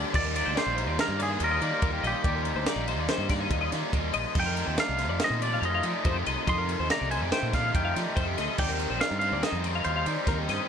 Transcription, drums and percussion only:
0.14 kick loud
0.14 crash loud
0.36 ride medium
0.57 snare loud
0.57 ride loud
0.78 ride medium
0.99 snare loud
0.99 ride loud
1.20 ride medium
1.40 ride loud
1.61 ride medium
1.82 kick loud
1.82 ride loud
2.04 ride medium
2.24 kick loud
2.24 ride loud
2.45 ride medium
2.66 snare loud
2.66 ride loud
2.88 ride medium
3.08 snare loud
3.08 ride loud
3.29 kick medium
3.29 snare soft
3.29 ride medium
3.51 kick loud
3.51 ride loud
3.72 snare soft
3.72 ride medium
3.93 kick loud
3.93 ride loud
4.13 ride medium
4.35 kick loud
4.35 crash loud
4.57 ride medium
4.77 snare loud
4.77 ride loud
4.99 snare soft
4.99 ride medium
5.19 snare loud
5.19 ride loud
5.42 ride medium
5.63 ride loud
5.83 ride medium
6.05 kick loud
6.05 ride loud
6.26 ride medium
6.47 kick loud
6.47 ride loud
6.69 ride medium
6.90 snare loud
6.90 ride loud
7.11 ride medium
7.32 snare loud
7.32 ride loud
7.53 kick medium
7.53 snare soft
7.53 ride medium
7.75 kick loud
7.75 ride loud
7.96 snare soft
7.96 ride medium
8.17 kick loud
8.17 ride loud
8.38 snare soft
8.38 ride medium
8.58 kick loud
8.58 crash loud
8.79 ride medium
9.01 snare loud
9.01 ride loud
9.21 ride medium
9.43 snare loud
9.43 ride loud
9.64 ride medium
9.84 ride loud
10.06 ride medium
10.27 kick loud
10.27 snare soft
10.27 ride loud
10.49 snare soft
10.49 ride medium

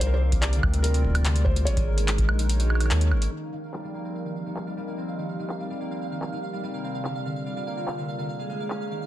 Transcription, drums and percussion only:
0.01 closed hi-hat medium
0.32 kick loud
0.32 closed hi-hat medium
0.43 clap loud
0.43 closed hi-hat medium
0.53 closed hi-hat soft
0.63 kick loud
0.63 high woodblock medium
0.74 closed hi-hat soft
0.84 closed hi-hat medium
0.94 closed hi-hat soft
1.05 kick medium
1.07 kick medium
1.10 kick medium
1.12 kick medium
1.15 kick soft
1.15 closed hi-hat soft
1.15 high woodblock medium
1.20 kick soft
1.23 kick soft
1.23 clap loud
1.23 closed hi-hat medium
1.36 closed hi-hat soft
1.46 kick loud
1.56 closed hi-hat medium
1.67 closed hi-hat medium
1.77 kick loud
1.77 closed hi-hat soft
1.98 closed hi-hat medium
2.08 clap loud
2.08 closed hi-hat medium
2.18 kick loud
2.18 closed hi-hat soft
2.29 high woodblock medium
2.39 closed hi-hat medium
2.49 closed hi-hat medium
2.60 closed hi-hat soft
2.70 high woodblock medium
2.75 high woodblock soft
2.81 closed hi-hat medium
2.81 high woodblock soft
2.86 high woodblock soft
2.91 clap loud
2.91 closed hi-hat medium
3.01 closed hi-hat soft
3.12 high woodblock soft
3.22 closed hi-hat medium
3.74 clap loud
4.56 clap loud
5.49 clap loud
6.22 clap loud
7.05 clap loud
7.87 clap loud
8.70 clap loud

